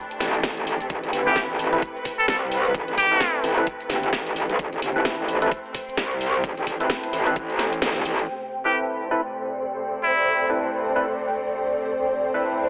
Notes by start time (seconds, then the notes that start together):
Already playing: C3 A3 D4 G5
0.11 closed hi-hat, shaker
0.20 A1, snare, open hi-hat
0.34 closed hi-hat, shaker
0.43 A1, kick, snare, closed hi-hat, shaker
0.57 closed hi-hat, shaker
0.67 open hi-hat
0.80 closed hi-hat, shaker
0.90 A1 B4, kick, closed hi-hat, shaker
1.03 A1, closed hi-hat, shaker
1.13 G1, open hi-hat
1.27 C4 E4 G4 A4 B4, shaker
1.36 kick, snare, closed hi-hat, shaker
1.50 A1, shaker
1.59 open hi-hat
1.73 C4 E4 A4 B4, closed hi-hat, shaker
1.82 kick, closed hi-hat, shaker
1.96 shaker
2.05 kick, open hi-hat
2.19 A4, shaker
2.28 C2 A4, kick, snare, closed hi-hat, shaker
2.42 closed hi-hat, shaker
2.52 open hi-hat
2.65 closed hi-hat, shaker
2.75 A1, kick, closed hi-hat, shaker
2.88 A1, closed hi-hat, shaker
2.98 A1 G4, kick, open hi-hat
3.11 C4 E4 A4 B4, shaker
3.20 kick, snare, closed hi-hat, shaker
3.35 shaker
3.44 A1, open hi-hat
3.57 C4 E4 A4 B4, closed hi-hat, shaker
3.67 kick, closed hi-hat, shaker
3.80 closed hi-hat, shaker
3.90 G1, snare, open hi-hat
4.03 closed hi-hat, shaker
4.13 A1, kick, snare, closed hi-hat, shaker
4.27 closed hi-hat, shaker
4.36 open hi-hat
4.50 B1, closed hi-hat, shaker
4.59 A1 C4, kick, closed hi-hat, shaker
4.73 A1, closed hi-hat, shaker
4.82 G1, open hi-hat
4.96 C4 E4 A4 B4, shaker
5.05 kick, snare, closed hi-hat, shaker
5.19 A1, shaker
5.28 open hi-hat
5.42 C4 E4 A4 B4, closed hi-hat, shaker
5.51 kick, closed hi-hat, shaker
5.66 shaker
5.75 kick, open hi-hat
5.89 shaker
5.97 C2, kick, snare, closed hi-hat, shaker
6.11 closed hi-hat, shaker
6.21 open hi-hat
6.34 closed hi-hat, shaker
6.44 A1, kick, closed hi-hat, shaker
6.57 A1, closed hi-hat, shaker
6.67 A1, kick, open hi-hat
6.80 C4 E4 A4 B4, closed hi-hat, shaker
6.90 kick, snare, closed hi-hat, shaker
7.03 closed hi-hat, shaker
7.13 A1, open hi-hat
7.26 C4 E4 A4 B4, closed hi-hat, shaker
7.36 A1, kick, closed hi-hat, shaker
7.50 closed hi-hat, shaker
7.59 snare, open hi-hat
7.73 closed hi-hat, shaker
7.82 A1, snare, closed hi-hat, shaker
7.96 G1, closed hi-hat, shaker
8.05 A1, open hi-hat
8.19 closed hi-hat, shaker
8.28 C3 A3 C4 A4
8.51 G5
8.55 D5
8.65 C4 E4 G4 A4 B4
9.11 C4 E4 A4 B4
9.38 C5
10.04 E4
10.50 C4 E4 A4 B4
10.96 C4 E4 A4 B4
11.98 C4
12.34 C4 E4 A4 B4